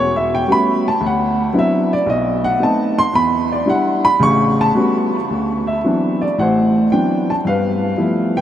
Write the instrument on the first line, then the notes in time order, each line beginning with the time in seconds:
upright piano
Already playing: E1 E2 C#5
0.16 E5
0.35 G5
0.47 G3 A3 B3 C#4 F#4
0.52 B5
0.88 A5
1.01 D2
1.06 F#5
1.53 F#3 B3 C4 D4 E4
1.59 E5
1.93 D5
2.06 B1 D#5
2.44 F#5
2.59 A3 B3 C4 D#4 A5
2.99 C6
3.13 E2 B5
3.52 D5
3.65 G3 D4 E4
3.70 F#5
4.05 B5
4.20 A1 C#3 C#6
4.61 A5
4.74 G3 A3 B3 C#4 F#4
5.30 D2
5.67 E5
5.84 E3 F#3 B3 C4 D4
6.21 D5
6.39 A1 A2 C5 F#5
6.92 E3 F#3 B3 C4 D4 G5
7.30 A5
7.45 G2 B4 F5
7.97 F3 G3 A3 B3 E4
8.37 B4 G5